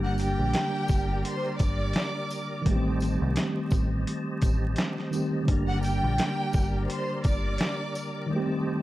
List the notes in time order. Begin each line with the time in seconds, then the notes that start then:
Already playing: G1 D3 G3 A#3 D4 G4 A#4 D5 A#5
0.03 F#5 F#6, snare
0.18 G4 G5, closed hi-hat, tambourine, shaker
0.39 A#1
0.53 snare, closed hi-hat
0.88 G1, kick, tambourine, shaker
1.25 C5 C6, closed hi-hat
1.59 G1 D5 D6, kick, closed hi-hat, tambourine, shaker
1.93 snare, closed hi-hat
2.30 tambourine, shaker
2.62 D#3 G3 C5 A5
2.66 A1 A3 A#3 D#5, kick, closed hi-hat
2.71 G4
2.75 C4
3.00 closed hi-hat, tambourine, shaker
3.22 C2
3.36 snare, closed hi-hat
3.71 A1, kick, tambourine, shaker
4.07 closed hi-hat
4.42 A1, kick, closed hi-hat, tambourine, shaker
4.76 snare, closed hi-hat
4.98 snare
5.11 D#3 G3 A3 C4, tambourine, shaker
5.16 G4
5.43 D3 G3
5.48 G1 A#3 D4 A#4 D5 A#5, kick, closed hi-hat
5.53 G4
5.68 F#5 F#6, snare
5.83 G4 G5, closed hi-hat, tambourine, shaker
6.04 A#1
6.18 snare, closed hi-hat
6.53 G1, kick, tambourine, shaker
6.88 C5 C6, closed hi-hat
7.24 G1 D5 D6, kick, closed hi-hat, tambourine, shaker
7.58 snare, closed hi-hat
7.95 tambourine, shaker
8.26 D#3 G3 C5 A5
8.30 A3 A#3 D#5
8.36 G4
8.40 C4